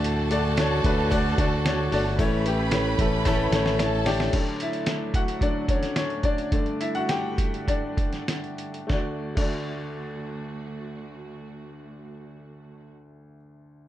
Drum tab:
CC |----------------|----------------|x---------------|----------------|
HH |x-x-x-x-x-x-x-o-|x-x-x-x-x-x-x-o-|xxxxx-xxx-xxxxxx|xxxxx-xxx-xxxxxx|
SD |----o-------o---|----o---o-ooo-oo|----o------oo---|----o------oo---|
BD |------o-o-o-----|o-----o-o-------|o-----o-o-o---o-|o-----o-o-o-----|

CC |---x------------|----------------|
HH |----------------|----------------|
SD |o---------------|----------------|
BD |o--o------------|----------------|